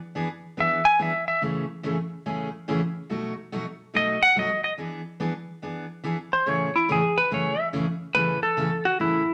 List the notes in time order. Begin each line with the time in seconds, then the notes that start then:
0.15 E3 B3 D4 G#4
0.57 E3 B3 D4 G#4 E5
0.85 G#5
0.99 E3 B3 D4 G#4 E5
1.28 E5
1.41 A2 C#3 E3 A3 C#4 G#4
1.83 A2 C#3 E3 A3 C#4 G#4
2.26 A2 C#3 E3 A3 C#4 G#4
2.68 A2 C#3 E3 A3 C#4 G#4
3.10 B2 F#3 A3 D#4 F#4
3.52 B2 F#3 A3 D#4 F#4
3.94 B2 F#3 A3 D#4 F#4 D#5
4.23 F#5
4.36 B2 F#3 A3 D#4 F#4 D#5
4.64 D#5
4.78 E3 B3 D4 G#4
5.20 E3 B3 D4 G#4
5.62 E3 B3 D4 G#4
6.04 E3 B3 D4 G#4
6.33 C5
6.46 A2 C#3 E3 A3 C#4 G#4 C#5
6.76 E4
6.88 A2 C#3 E3 A3 C#4 G#4
7.18 B4
7.31 A2 C#3 E3 A3 C#4 G#4 C#5
7.60 E5
7.73 A2 C#3 E3 A3 C#4 G#4
8.15 A2 C#3 E3 A3 C#4 A4 B4
8.43 A4
8.57 A2 C#3 E3 A3 C#4 A4
8.85 F#4
8.99 A2 C#3 E3 A3 C#4 E4 A4